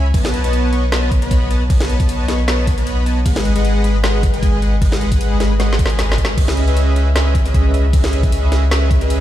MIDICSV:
0, 0, Header, 1, 4, 480
1, 0, Start_track
1, 0, Key_signature, 4, "minor"
1, 0, Tempo, 389610
1, 174, Time_signature, 4, 2, 24, 8
1, 11339, End_track
2, 0, Start_track
2, 0, Title_t, "Analog polysynth"
2, 0, Program_c, 0, 90
2, 174, Note_on_c, 0, 73, 88
2, 175, Note_on_c, 0, 59, 101
2, 175, Note_on_c, 0, 71, 88
2, 175, Note_on_c, 0, 75, 90
2, 175, Note_on_c, 0, 81, 112
2, 512, Note_off_c, 0, 59, 0
2, 512, Note_off_c, 0, 71, 0
2, 512, Note_off_c, 0, 73, 0
2, 512, Note_off_c, 0, 75, 0
2, 512, Note_off_c, 0, 81, 0
2, 544, Note_on_c, 0, 59, 98
2, 544, Note_on_c, 0, 71, 94
2, 544, Note_on_c, 0, 73, 91
2, 544, Note_on_c, 0, 75, 91
2, 544, Note_on_c, 0, 81, 112
2, 868, Note_off_c, 0, 59, 0
2, 868, Note_off_c, 0, 71, 0
2, 868, Note_off_c, 0, 73, 0
2, 868, Note_off_c, 0, 75, 0
2, 868, Note_off_c, 0, 81, 0
2, 894, Note_on_c, 0, 59, 86
2, 894, Note_on_c, 0, 75, 79
2, 895, Note_on_c, 0, 71, 81
2, 895, Note_on_c, 0, 73, 76
2, 895, Note_on_c, 0, 85, 93
2, 1047, Note_off_c, 0, 59, 0
2, 1047, Note_off_c, 0, 71, 0
2, 1047, Note_off_c, 0, 73, 0
2, 1047, Note_off_c, 0, 75, 0
2, 1047, Note_off_c, 0, 85, 0
2, 1135, Note_on_c, 0, 71, 84
2, 1135, Note_on_c, 0, 75, 84
2, 1135, Note_on_c, 0, 81, 100
2, 1136, Note_on_c, 0, 59, 94
2, 1136, Note_on_c, 0, 73, 85
2, 1472, Note_off_c, 0, 71, 0
2, 1472, Note_off_c, 0, 75, 0
2, 1472, Note_off_c, 0, 81, 0
2, 1473, Note_off_c, 0, 59, 0
2, 1473, Note_off_c, 0, 73, 0
2, 1504, Note_on_c, 0, 75, 77
2, 1504, Note_on_c, 0, 83, 94
2, 1505, Note_on_c, 0, 59, 85
2, 1505, Note_on_c, 0, 71, 82
2, 1505, Note_on_c, 0, 73, 75
2, 1828, Note_off_c, 0, 59, 0
2, 1828, Note_off_c, 0, 71, 0
2, 1828, Note_off_c, 0, 73, 0
2, 1828, Note_off_c, 0, 75, 0
2, 1828, Note_off_c, 0, 83, 0
2, 1854, Note_on_c, 0, 59, 73
2, 1854, Note_on_c, 0, 71, 72
2, 1854, Note_on_c, 0, 73, 70
2, 1854, Note_on_c, 0, 75, 71
2, 1854, Note_on_c, 0, 81, 83
2, 2007, Note_off_c, 0, 59, 0
2, 2007, Note_off_c, 0, 71, 0
2, 2007, Note_off_c, 0, 73, 0
2, 2007, Note_off_c, 0, 75, 0
2, 2007, Note_off_c, 0, 81, 0
2, 2093, Note_on_c, 0, 71, 91
2, 2094, Note_on_c, 0, 59, 98
2, 2094, Note_on_c, 0, 73, 91
2, 2094, Note_on_c, 0, 75, 89
2, 2094, Note_on_c, 0, 81, 105
2, 2431, Note_off_c, 0, 71, 0
2, 2432, Note_off_c, 0, 59, 0
2, 2432, Note_off_c, 0, 73, 0
2, 2432, Note_off_c, 0, 75, 0
2, 2432, Note_off_c, 0, 81, 0
2, 2461, Note_on_c, 0, 73, 90
2, 2461, Note_on_c, 0, 81, 113
2, 2462, Note_on_c, 0, 59, 97
2, 2462, Note_on_c, 0, 71, 89
2, 2462, Note_on_c, 0, 75, 89
2, 2786, Note_off_c, 0, 73, 0
2, 2786, Note_off_c, 0, 81, 0
2, 2787, Note_off_c, 0, 59, 0
2, 2787, Note_off_c, 0, 71, 0
2, 2787, Note_off_c, 0, 75, 0
2, 2811, Note_on_c, 0, 73, 80
2, 2812, Note_on_c, 0, 59, 87
2, 2812, Note_on_c, 0, 71, 81
2, 2812, Note_on_c, 0, 75, 77
2, 2812, Note_on_c, 0, 85, 96
2, 2966, Note_off_c, 0, 59, 0
2, 2966, Note_off_c, 0, 71, 0
2, 2966, Note_off_c, 0, 73, 0
2, 2966, Note_off_c, 0, 75, 0
2, 2966, Note_off_c, 0, 85, 0
2, 3051, Note_on_c, 0, 71, 88
2, 3052, Note_on_c, 0, 59, 93
2, 3052, Note_on_c, 0, 73, 85
2, 3052, Note_on_c, 0, 75, 82
2, 3052, Note_on_c, 0, 81, 102
2, 3390, Note_off_c, 0, 71, 0
2, 3391, Note_off_c, 0, 59, 0
2, 3391, Note_off_c, 0, 73, 0
2, 3391, Note_off_c, 0, 75, 0
2, 3391, Note_off_c, 0, 81, 0
2, 3420, Note_on_c, 0, 59, 88
2, 3420, Note_on_c, 0, 73, 79
2, 3420, Note_on_c, 0, 75, 81
2, 3421, Note_on_c, 0, 71, 80
2, 3421, Note_on_c, 0, 83, 94
2, 3746, Note_off_c, 0, 59, 0
2, 3746, Note_off_c, 0, 71, 0
2, 3746, Note_off_c, 0, 73, 0
2, 3746, Note_off_c, 0, 75, 0
2, 3746, Note_off_c, 0, 83, 0
2, 3771, Note_on_c, 0, 59, 76
2, 3771, Note_on_c, 0, 71, 69
2, 3771, Note_on_c, 0, 73, 69
2, 3771, Note_on_c, 0, 75, 70
2, 3771, Note_on_c, 0, 81, 84
2, 3925, Note_off_c, 0, 73, 0
2, 3925, Note_off_c, 0, 75, 0
2, 3926, Note_off_c, 0, 59, 0
2, 3926, Note_off_c, 0, 71, 0
2, 3926, Note_off_c, 0, 81, 0
2, 4011, Note_on_c, 0, 71, 92
2, 4011, Note_on_c, 0, 75, 90
2, 4012, Note_on_c, 0, 56, 96
2, 4012, Note_on_c, 0, 68, 90
2, 4012, Note_on_c, 0, 78, 107
2, 4350, Note_off_c, 0, 75, 0
2, 4351, Note_off_c, 0, 56, 0
2, 4351, Note_off_c, 0, 68, 0
2, 4351, Note_off_c, 0, 71, 0
2, 4351, Note_off_c, 0, 78, 0
2, 4381, Note_on_c, 0, 56, 98
2, 4381, Note_on_c, 0, 68, 89
2, 4381, Note_on_c, 0, 71, 90
2, 4381, Note_on_c, 0, 75, 93
2, 4381, Note_on_c, 0, 78, 108
2, 4706, Note_off_c, 0, 56, 0
2, 4706, Note_off_c, 0, 68, 0
2, 4706, Note_off_c, 0, 71, 0
2, 4706, Note_off_c, 0, 75, 0
2, 4706, Note_off_c, 0, 78, 0
2, 4732, Note_on_c, 0, 56, 86
2, 4732, Note_on_c, 0, 68, 79
2, 4732, Note_on_c, 0, 71, 78
2, 4732, Note_on_c, 0, 75, 78
2, 4732, Note_on_c, 0, 83, 91
2, 4886, Note_off_c, 0, 56, 0
2, 4886, Note_off_c, 0, 68, 0
2, 4886, Note_off_c, 0, 71, 0
2, 4886, Note_off_c, 0, 75, 0
2, 4886, Note_off_c, 0, 83, 0
2, 4971, Note_on_c, 0, 68, 82
2, 4971, Note_on_c, 0, 71, 84
2, 4971, Note_on_c, 0, 78, 103
2, 4972, Note_on_c, 0, 56, 91
2, 4972, Note_on_c, 0, 75, 82
2, 5310, Note_off_c, 0, 68, 0
2, 5310, Note_off_c, 0, 78, 0
2, 5311, Note_off_c, 0, 56, 0
2, 5311, Note_off_c, 0, 71, 0
2, 5311, Note_off_c, 0, 75, 0
2, 5342, Note_on_c, 0, 56, 88
2, 5342, Note_on_c, 0, 68, 80
2, 5342, Note_on_c, 0, 71, 76
2, 5342, Note_on_c, 0, 75, 78
2, 5342, Note_on_c, 0, 80, 92
2, 5667, Note_off_c, 0, 56, 0
2, 5667, Note_off_c, 0, 68, 0
2, 5667, Note_off_c, 0, 71, 0
2, 5667, Note_off_c, 0, 75, 0
2, 5667, Note_off_c, 0, 80, 0
2, 5694, Note_on_c, 0, 56, 76
2, 5694, Note_on_c, 0, 68, 70
2, 5694, Note_on_c, 0, 71, 67
2, 5694, Note_on_c, 0, 75, 70
2, 5694, Note_on_c, 0, 78, 82
2, 5847, Note_off_c, 0, 56, 0
2, 5847, Note_off_c, 0, 68, 0
2, 5847, Note_off_c, 0, 71, 0
2, 5847, Note_off_c, 0, 75, 0
2, 5847, Note_off_c, 0, 78, 0
2, 5933, Note_on_c, 0, 56, 98
2, 5933, Note_on_c, 0, 68, 86
2, 5933, Note_on_c, 0, 71, 88
2, 5933, Note_on_c, 0, 75, 90
2, 5933, Note_on_c, 0, 78, 107
2, 6271, Note_off_c, 0, 56, 0
2, 6271, Note_off_c, 0, 68, 0
2, 6271, Note_off_c, 0, 71, 0
2, 6271, Note_off_c, 0, 75, 0
2, 6271, Note_off_c, 0, 78, 0
2, 6301, Note_on_c, 0, 56, 98
2, 6301, Note_on_c, 0, 68, 91
2, 6302, Note_on_c, 0, 71, 92
2, 6302, Note_on_c, 0, 75, 92
2, 6302, Note_on_c, 0, 78, 111
2, 6626, Note_off_c, 0, 56, 0
2, 6626, Note_off_c, 0, 68, 0
2, 6627, Note_off_c, 0, 71, 0
2, 6627, Note_off_c, 0, 75, 0
2, 6627, Note_off_c, 0, 78, 0
2, 6654, Note_on_c, 0, 56, 85
2, 6654, Note_on_c, 0, 68, 78
2, 6654, Note_on_c, 0, 71, 76
2, 6654, Note_on_c, 0, 75, 79
2, 6654, Note_on_c, 0, 83, 91
2, 6807, Note_off_c, 0, 56, 0
2, 6807, Note_off_c, 0, 68, 0
2, 6807, Note_off_c, 0, 71, 0
2, 6807, Note_off_c, 0, 75, 0
2, 6807, Note_off_c, 0, 83, 0
2, 6894, Note_on_c, 0, 56, 90
2, 6894, Note_on_c, 0, 68, 84
2, 6894, Note_on_c, 0, 71, 85
2, 6894, Note_on_c, 0, 75, 84
2, 6894, Note_on_c, 0, 78, 102
2, 7232, Note_off_c, 0, 56, 0
2, 7232, Note_off_c, 0, 68, 0
2, 7232, Note_off_c, 0, 71, 0
2, 7232, Note_off_c, 0, 75, 0
2, 7232, Note_off_c, 0, 78, 0
2, 7262, Note_on_c, 0, 56, 82
2, 7262, Note_on_c, 0, 71, 74
2, 7262, Note_on_c, 0, 75, 78
2, 7262, Note_on_c, 0, 80, 90
2, 7263, Note_on_c, 0, 68, 74
2, 7471, Note_off_c, 0, 56, 0
2, 7471, Note_off_c, 0, 75, 0
2, 7472, Note_off_c, 0, 68, 0
2, 7472, Note_off_c, 0, 71, 0
2, 7472, Note_off_c, 0, 80, 0
2, 7503, Note_on_c, 0, 56, 79
2, 7503, Note_on_c, 0, 68, 72
2, 7503, Note_on_c, 0, 71, 75
2, 7503, Note_on_c, 0, 75, 74
2, 7503, Note_on_c, 0, 80, 90
2, 7827, Note_off_c, 0, 56, 0
2, 7827, Note_off_c, 0, 68, 0
2, 7827, Note_off_c, 0, 71, 0
2, 7827, Note_off_c, 0, 75, 0
2, 7827, Note_off_c, 0, 80, 0
2, 7855, Note_on_c, 0, 61, 96
2, 7855, Note_on_c, 0, 68, 87
2, 7855, Note_on_c, 0, 71, 89
2, 7855, Note_on_c, 0, 75, 87
2, 7855, Note_on_c, 0, 76, 107
2, 8192, Note_off_c, 0, 61, 0
2, 8192, Note_off_c, 0, 68, 0
2, 8192, Note_off_c, 0, 75, 0
2, 8193, Note_off_c, 0, 71, 0
2, 8193, Note_off_c, 0, 76, 0
2, 8224, Note_on_c, 0, 61, 101
2, 8224, Note_on_c, 0, 68, 92
2, 8224, Note_on_c, 0, 71, 94
2, 8224, Note_on_c, 0, 75, 91
2, 8224, Note_on_c, 0, 76, 110
2, 8548, Note_off_c, 0, 61, 0
2, 8548, Note_off_c, 0, 68, 0
2, 8548, Note_off_c, 0, 71, 0
2, 8548, Note_off_c, 0, 75, 0
2, 8548, Note_off_c, 0, 76, 0
2, 8574, Note_on_c, 0, 61, 88
2, 8575, Note_on_c, 0, 68, 77
2, 8575, Note_on_c, 0, 71, 81
2, 8575, Note_on_c, 0, 75, 78
2, 8575, Note_on_c, 0, 76, 91
2, 8727, Note_off_c, 0, 61, 0
2, 8727, Note_off_c, 0, 68, 0
2, 8727, Note_off_c, 0, 71, 0
2, 8727, Note_off_c, 0, 75, 0
2, 8727, Note_off_c, 0, 76, 0
2, 8815, Note_on_c, 0, 61, 90
2, 8815, Note_on_c, 0, 68, 84
2, 8815, Note_on_c, 0, 71, 85
2, 8815, Note_on_c, 0, 75, 84
2, 8816, Note_on_c, 0, 76, 101
2, 9152, Note_off_c, 0, 68, 0
2, 9152, Note_off_c, 0, 71, 0
2, 9152, Note_off_c, 0, 75, 0
2, 9153, Note_off_c, 0, 61, 0
2, 9153, Note_off_c, 0, 76, 0
2, 9183, Note_on_c, 0, 61, 89
2, 9183, Note_on_c, 0, 68, 75
2, 9183, Note_on_c, 0, 71, 76
2, 9183, Note_on_c, 0, 75, 78
2, 9183, Note_on_c, 0, 76, 94
2, 9507, Note_off_c, 0, 61, 0
2, 9507, Note_off_c, 0, 68, 0
2, 9507, Note_off_c, 0, 71, 0
2, 9507, Note_off_c, 0, 75, 0
2, 9507, Note_off_c, 0, 76, 0
2, 9534, Note_on_c, 0, 68, 70
2, 9534, Note_on_c, 0, 75, 72
2, 9534, Note_on_c, 0, 76, 87
2, 9535, Note_on_c, 0, 61, 78
2, 9535, Note_on_c, 0, 71, 69
2, 9687, Note_off_c, 0, 61, 0
2, 9687, Note_off_c, 0, 68, 0
2, 9687, Note_off_c, 0, 71, 0
2, 9687, Note_off_c, 0, 75, 0
2, 9687, Note_off_c, 0, 76, 0
2, 9773, Note_on_c, 0, 61, 99
2, 9773, Note_on_c, 0, 68, 90
2, 9773, Note_on_c, 0, 71, 89
2, 9773, Note_on_c, 0, 75, 89
2, 9773, Note_on_c, 0, 76, 112
2, 10111, Note_off_c, 0, 61, 0
2, 10111, Note_off_c, 0, 68, 0
2, 10111, Note_off_c, 0, 71, 0
2, 10111, Note_off_c, 0, 75, 0
2, 10111, Note_off_c, 0, 76, 0
2, 10140, Note_on_c, 0, 71, 94
2, 10466, Note_off_c, 0, 71, 0
2, 10494, Note_on_c, 0, 61, 87
2, 10494, Note_on_c, 0, 68, 76
2, 10494, Note_on_c, 0, 75, 80
2, 10494, Note_on_c, 0, 76, 94
2, 10495, Note_on_c, 0, 71, 77
2, 10647, Note_off_c, 0, 61, 0
2, 10647, Note_off_c, 0, 68, 0
2, 10647, Note_off_c, 0, 71, 0
2, 10647, Note_off_c, 0, 75, 0
2, 10647, Note_off_c, 0, 76, 0
2, 10734, Note_on_c, 0, 61, 91
2, 10734, Note_on_c, 0, 68, 85
2, 10734, Note_on_c, 0, 71, 86
2, 10734, Note_on_c, 0, 75, 84
2, 10734, Note_on_c, 0, 76, 101
2, 11072, Note_off_c, 0, 61, 0
2, 11072, Note_off_c, 0, 68, 0
2, 11072, Note_off_c, 0, 71, 0
2, 11072, Note_off_c, 0, 75, 0
2, 11072, Note_off_c, 0, 76, 0
2, 11102, Note_on_c, 0, 75, 80
2, 11103, Note_on_c, 0, 61, 89
2, 11103, Note_on_c, 0, 68, 78
2, 11103, Note_on_c, 0, 71, 81
2, 11103, Note_on_c, 0, 76, 94
2, 11339, Note_off_c, 0, 61, 0
2, 11339, Note_off_c, 0, 68, 0
2, 11339, Note_off_c, 0, 71, 0
2, 11339, Note_off_c, 0, 75, 0
2, 11339, Note_off_c, 0, 76, 0
2, 11339, End_track
3, 0, Start_track
3, 0, Title_t, "Sub bass"
3, 0, Program_c, 1, 38
3, 0, Note_on_c, 1, 37, 90
3, 151, Note_off_c, 1, 37, 0
3, 174, Note_on_c, 1, 35, 91
3, 3992, Note_off_c, 1, 35, 0
3, 4012, Note_on_c, 1, 32, 91
3, 7831, Note_off_c, 1, 32, 0
3, 7854, Note_on_c, 1, 37, 92
3, 11339, Note_off_c, 1, 37, 0
3, 11339, End_track
4, 0, Start_track
4, 0, Title_t, "Drums"
4, 174, Note_on_c, 9, 36, 120
4, 176, Note_on_c, 9, 42, 81
4, 176, Note_on_c, 9, 49, 51
4, 297, Note_off_c, 9, 36, 0
4, 299, Note_off_c, 9, 42, 0
4, 299, Note_off_c, 9, 49, 0
4, 305, Note_on_c, 9, 40, 78
4, 417, Note_on_c, 9, 42, 61
4, 428, Note_off_c, 9, 40, 0
4, 540, Note_off_c, 9, 42, 0
4, 545, Note_on_c, 9, 42, 63
4, 655, Note_off_c, 9, 42, 0
4, 655, Note_on_c, 9, 42, 76
4, 778, Note_off_c, 9, 42, 0
4, 895, Note_on_c, 9, 42, 57
4, 1019, Note_off_c, 9, 42, 0
4, 1136, Note_on_c, 9, 38, 118
4, 1136, Note_on_c, 9, 42, 78
4, 1259, Note_off_c, 9, 38, 0
4, 1259, Note_off_c, 9, 42, 0
4, 1374, Note_on_c, 9, 36, 103
4, 1375, Note_on_c, 9, 42, 68
4, 1497, Note_off_c, 9, 36, 0
4, 1498, Note_off_c, 9, 42, 0
4, 1504, Note_on_c, 9, 42, 61
4, 1614, Note_off_c, 9, 42, 0
4, 1614, Note_on_c, 9, 36, 107
4, 1614, Note_on_c, 9, 42, 76
4, 1737, Note_off_c, 9, 36, 0
4, 1738, Note_off_c, 9, 42, 0
4, 1855, Note_on_c, 9, 42, 59
4, 1978, Note_off_c, 9, 42, 0
4, 2094, Note_on_c, 9, 36, 119
4, 2095, Note_on_c, 9, 42, 81
4, 2095, Note_on_c, 9, 49, 54
4, 2217, Note_off_c, 9, 36, 0
4, 2218, Note_off_c, 9, 42, 0
4, 2218, Note_off_c, 9, 49, 0
4, 2223, Note_on_c, 9, 40, 81
4, 2335, Note_on_c, 9, 42, 61
4, 2346, Note_off_c, 9, 40, 0
4, 2458, Note_off_c, 9, 42, 0
4, 2462, Note_on_c, 9, 36, 109
4, 2463, Note_on_c, 9, 42, 70
4, 2574, Note_off_c, 9, 42, 0
4, 2574, Note_on_c, 9, 42, 80
4, 2585, Note_off_c, 9, 36, 0
4, 2697, Note_off_c, 9, 42, 0
4, 2814, Note_on_c, 9, 40, 61
4, 2814, Note_on_c, 9, 42, 61
4, 2937, Note_off_c, 9, 40, 0
4, 2937, Note_off_c, 9, 42, 0
4, 3054, Note_on_c, 9, 38, 117
4, 3054, Note_on_c, 9, 42, 80
4, 3177, Note_off_c, 9, 38, 0
4, 3177, Note_off_c, 9, 42, 0
4, 3292, Note_on_c, 9, 36, 107
4, 3294, Note_on_c, 9, 42, 69
4, 3415, Note_off_c, 9, 36, 0
4, 3417, Note_off_c, 9, 42, 0
4, 3422, Note_on_c, 9, 42, 67
4, 3533, Note_off_c, 9, 42, 0
4, 3533, Note_on_c, 9, 42, 78
4, 3656, Note_off_c, 9, 42, 0
4, 3773, Note_on_c, 9, 42, 59
4, 3897, Note_off_c, 9, 42, 0
4, 4012, Note_on_c, 9, 36, 117
4, 4013, Note_on_c, 9, 42, 85
4, 4013, Note_on_c, 9, 49, 49
4, 4135, Note_off_c, 9, 36, 0
4, 4136, Note_off_c, 9, 42, 0
4, 4136, Note_off_c, 9, 49, 0
4, 4141, Note_on_c, 9, 40, 81
4, 4252, Note_on_c, 9, 42, 67
4, 4265, Note_off_c, 9, 40, 0
4, 4375, Note_off_c, 9, 42, 0
4, 4382, Note_on_c, 9, 42, 71
4, 4493, Note_off_c, 9, 42, 0
4, 4493, Note_on_c, 9, 42, 81
4, 4616, Note_off_c, 9, 42, 0
4, 4732, Note_on_c, 9, 42, 63
4, 4856, Note_off_c, 9, 42, 0
4, 4973, Note_on_c, 9, 38, 118
4, 4973, Note_on_c, 9, 42, 82
4, 5097, Note_off_c, 9, 38, 0
4, 5097, Note_off_c, 9, 42, 0
4, 5213, Note_on_c, 9, 36, 101
4, 5213, Note_on_c, 9, 42, 70
4, 5336, Note_off_c, 9, 36, 0
4, 5337, Note_off_c, 9, 42, 0
4, 5343, Note_on_c, 9, 42, 67
4, 5453, Note_on_c, 9, 36, 98
4, 5456, Note_off_c, 9, 42, 0
4, 5456, Note_on_c, 9, 42, 83
4, 5576, Note_off_c, 9, 36, 0
4, 5579, Note_off_c, 9, 42, 0
4, 5695, Note_on_c, 9, 42, 63
4, 5818, Note_off_c, 9, 42, 0
4, 5934, Note_on_c, 9, 36, 118
4, 5935, Note_on_c, 9, 42, 91
4, 5935, Note_on_c, 9, 49, 49
4, 6057, Note_off_c, 9, 36, 0
4, 6058, Note_off_c, 9, 42, 0
4, 6058, Note_off_c, 9, 49, 0
4, 6064, Note_on_c, 9, 40, 83
4, 6174, Note_on_c, 9, 42, 69
4, 6187, Note_off_c, 9, 40, 0
4, 6297, Note_off_c, 9, 42, 0
4, 6303, Note_on_c, 9, 36, 108
4, 6304, Note_on_c, 9, 42, 72
4, 6415, Note_off_c, 9, 42, 0
4, 6415, Note_on_c, 9, 42, 87
4, 6426, Note_off_c, 9, 36, 0
4, 6539, Note_off_c, 9, 42, 0
4, 6656, Note_on_c, 9, 40, 63
4, 6656, Note_on_c, 9, 42, 64
4, 6779, Note_off_c, 9, 40, 0
4, 6779, Note_off_c, 9, 42, 0
4, 6896, Note_on_c, 9, 38, 67
4, 6896, Note_on_c, 9, 42, 84
4, 7019, Note_off_c, 9, 38, 0
4, 7019, Note_off_c, 9, 42, 0
4, 7055, Note_on_c, 9, 38, 76
4, 7134, Note_on_c, 9, 36, 104
4, 7135, Note_on_c, 9, 42, 70
4, 7178, Note_off_c, 9, 38, 0
4, 7215, Note_on_c, 9, 38, 85
4, 7257, Note_off_c, 9, 36, 0
4, 7258, Note_off_c, 9, 42, 0
4, 7265, Note_on_c, 9, 42, 69
4, 7338, Note_off_c, 9, 38, 0
4, 7376, Note_off_c, 9, 42, 0
4, 7376, Note_on_c, 9, 38, 89
4, 7376, Note_on_c, 9, 42, 85
4, 7500, Note_off_c, 9, 38, 0
4, 7500, Note_off_c, 9, 42, 0
4, 7536, Note_on_c, 9, 38, 96
4, 7614, Note_on_c, 9, 36, 60
4, 7616, Note_on_c, 9, 42, 63
4, 7659, Note_off_c, 9, 38, 0
4, 7696, Note_on_c, 9, 38, 104
4, 7737, Note_off_c, 9, 36, 0
4, 7740, Note_off_c, 9, 42, 0
4, 7819, Note_off_c, 9, 38, 0
4, 7854, Note_on_c, 9, 36, 121
4, 7857, Note_on_c, 9, 42, 85
4, 7857, Note_on_c, 9, 49, 80
4, 7977, Note_off_c, 9, 36, 0
4, 7980, Note_off_c, 9, 42, 0
4, 7980, Note_off_c, 9, 49, 0
4, 7985, Note_on_c, 9, 40, 81
4, 8096, Note_on_c, 9, 42, 69
4, 8108, Note_off_c, 9, 40, 0
4, 8219, Note_off_c, 9, 42, 0
4, 8225, Note_on_c, 9, 42, 71
4, 8336, Note_off_c, 9, 42, 0
4, 8336, Note_on_c, 9, 42, 86
4, 8459, Note_off_c, 9, 42, 0
4, 8577, Note_on_c, 9, 42, 61
4, 8700, Note_off_c, 9, 42, 0
4, 8816, Note_on_c, 9, 38, 120
4, 8816, Note_on_c, 9, 42, 85
4, 8940, Note_off_c, 9, 38, 0
4, 8940, Note_off_c, 9, 42, 0
4, 9053, Note_on_c, 9, 36, 105
4, 9056, Note_on_c, 9, 42, 73
4, 9177, Note_off_c, 9, 36, 0
4, 9179, Note_off_c, 9, 42, 0
4, 9185, Note_on_c, 9, 42, 70
4, 9294, Note_on_c, 9, 36, 111
4, 9296, Note_off_c, 9, 42, 0
4, 9296, Note_on_c, 9, 42, 83
4, 9417, Note_off_c, 9, 36, 0
4, 9419, Note_off_c, 9, 42, 0
4, 9535, Note_on_c, 9, 42, 63
4, 9658, Note_off_c, 9, 42, 0
4, 9773, Note_on_c, 9, 36, 126
4, 9774, Note_on_c, 9, 42, 83
4, 9774, Note_on_c, 9, 49, 46
4, 9897, Note_off_c, 9, 36, 0
4, 9898, Note_off_c, 9, 42, 0
4, 9898, Note_off_c, 9, 49, 0
4, 9903, Note_on_c, 9, 40, 77
4, 10015, Note_on_c, 9, 42, 62
4, 10026, Note_off_c, 9, 40, 0
4, 10138, Note_off_c, 9, 42, 0
4, 10142, Note_on_c, 9, 36, 115
4, 10143, Note_on_c, 9, 42, 68
4, 10254, Note_off_c, 9, 42, 0
4, 10254, Note_on_c, 9, 42, 83
4, 10265, Note_off_c, 9, 36, 0
4, 10378, Note_off_c, 9, 42, 0
4, 10495, Note_on_c, 9, 40, 58
4, 10495, Note_on_c, 9, 42, 61
4, 10618, Note_off_c, 9, 40, 0
4, 10618, Note_off_c, 9, 42, 0
4, 10735, Note_on_c, 9, 38, 127
4, 10735, Note_on_c, 9, 42, 82
4, 10859, Note_off_c, 9, 38, 0
4, 10859, Note_off_c, 9, 42, 0
4, 10973, Note_on_c, 9, 36, 106
4, 10975, Note_on_c, 9, 42, 67
4, 11097, Note_off_c, 9, 36, 0
4, 11098, Note_off_c, 9, 42, 0
4, 11103, Note_on_c, 9, 42, 66
4, 11214, Note_off_c, 9, 42, 0
4, 11214, Note_on_c, 9, 42, 80
4, 11337, Note_off_c, 9, 42, 0
4, 11339, End_track
0, 0, End_of_file